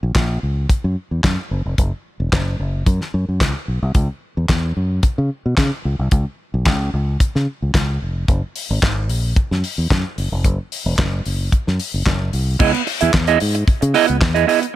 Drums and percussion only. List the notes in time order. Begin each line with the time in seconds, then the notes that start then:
0.15 kick, snare, clap, closed hi-hat
0.69 kick, closed hi-hat
1.24 kick, snare, clap, closed hi-hat
1.78 kick, closed hi-hat
2.32 kick, snare, clap, closed hi-hat
2.86 kick, closed hi-hat
3.01 snare
3.41 kick, snare, clap, closed hi-hat
3.95 kick, closed hi-hat
4.48 kick, snare, clap, closed hi-hat
5.03 kick, closed hi-hat
5.57 kick, snare, clap, closed hi-hat
6.11 kick, closed hi-hat
6.65 kick, snare, clap, closed hi-hat
7.20 kick, closed hi-hat
7.35 snare
7.74 kick, snare, clap, closed hi-hat
8.28 kick, closed hi-hat
8.56 open hi-hat
8.82 kick, snare, clap, closed hi-hat
9.09 open hi-hat
9.36 kick, closed hi-hat
9.52 snare
9.64 open hi-hat
9.90 kick, snare, clap, closed hi-hat
10.18 open hi-hat
10.44 kick, closed hi-hat
10.72 open hi-hat
10.98 kick, snare, clap, closed hi-hat
11.26 open hi-hat
11.52 kick, closed hi-hat
11.67 snare
11.80 open hi-hat
12.06 kick, snare, clap, closed hi-hat
12.33 open hi-hat
12.60 kick, crash
12.75 closed hi-hat
12.87 open hi-hat
13.01 closed hi-hat
13.14 kick, snare, clap
13.27 closed hi-hat
13.40 open hi-hat
13.55 closed hi-hat
13.68 kick, closed hi-hat
13.82 closed hi-hat
13.94 open hi-hat
14.08 closed hi-hat
14.21 kick, snare, clap
14.36 closed hi-hat
14.49 open hi-hat
14.63 closed hi-hat